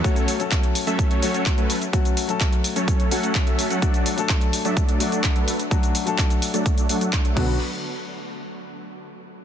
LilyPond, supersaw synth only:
\new Staff \with { instrumentName = "Supersaw synth" } { \time 4/4 \key fis \phrygian \tempo 4 = 127 <fis a cis' a' cis''>8 r4 r16 <fis a cis' a' e''>8 <fis a cis' a' cis''>16 <fis a cis' a' cis''>16 <fis a cis' a' cis''>16 r16 <fis a cis' a' b'>16 r8 | r4. r16 <fis a cis' a' cis''>16 <fis a cis' a' cis''>8 <fis a cis' a' fis''>16 <fis a cis' a' fis''>8 <fis a cis' a' e''>8 <fis a cis' a' fis''>16 | <fis a d' a' d''>8 r4 r16 <fis a d' a' e''>8 <fis a d' a' d''>16 <fis a d' a' d''>16 <fis a d' a' d''>16 r16 <fis a d' a' b'>16 r8 | r4. r16 <fis a d' a' d''>16 <fis a d' a' d''>8 <fis a d' a' fis''>16 <fis a d' a' fis''>8 <fis a d' a' e''>16 <d fis b fis' b'>8 |
r1 | }